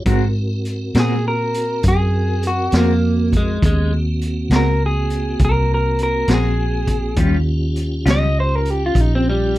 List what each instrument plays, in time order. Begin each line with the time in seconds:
0.05 fingered electric bass G#2, clean electric guitar G#3 C4 F#4 A#4, tonewheel organ C4 F#4 A#4, kick, closed hi-hat
0.65 closed hi-hat
0.94 fingered electric bass A#2, clean electric guitar G#3 C4 F#4 A#4, snare, closed hi-hat
1.00 clean electric guitar G#4
1.28 clean electric guitar A#4
1.54 closed hi-hat
1.83 fingered electric bass F#2, kick, closed hi-hat
1.88 clean electric guitar G#4
2.43 closed hi-hat
2.47 clean electric guitar F#4
2.72 fingered electric bass F2, clean electric guitar G#3 C4 F#4 A#4, snare, closed hi-hat
2.77 clean electric guitar A#3
3.33 kick, closed hi-hat
3.37 clean electric guitar G#3
3.62 fingered electric bass D#2, clean electric guitar G#3, tonewheel organ B3 C#4 G4, kick, closed hi-hat
3.93 tonewheel organ A#3 C4 F#4
4.21 closed hi-hat
4.50 fingered electric bass C#2, clean electric guitar G#3 C4 F#4 A#4, snare, closed hi-hat
4.56 clean electric guitar A#4
4.86 clean electric guitar G#4
5.10 closed hi-hat
5.39 fingered electric bass C2, kick, closed hi-hat
5.45 clean electric guitar A#4
5.74 clean electric guitar A#4
5.99 closed hi-hat
6.03 clean electric guitar A#4
6.28 fingered electric bass A#1, clean electric guitar G#3 C4 F#4 A#4, snare, closed hi-hat
6.34 clean electric guitar G#4
6.87 kick, closed hi-hat
7.16 fingered electric bass D#2, clean electric guitar D#3 G3 C#4 F4, tonewheel organ C#4 F4 G4, kick, closed hi-hat
7.76 closed hi-hat
8.06 fingered electric bass C#2, clean electric guitar D#3 G3 C#4 F4, snare, closed hi-hat
8.10 clean electric guitar D#5
8.40 clean electric guitar C5
8.55 clean electric guitar A#4
8.65 closed hi-hat
8.70 clean electric guitar G4
8.86 clean electric guitar F4
8.95 fingered electric bass A#1, kick, closed hi-hat
9.01 clean electric guitar D#4
9.15 clean electric guitar C4
9.30 clean electric guitar G3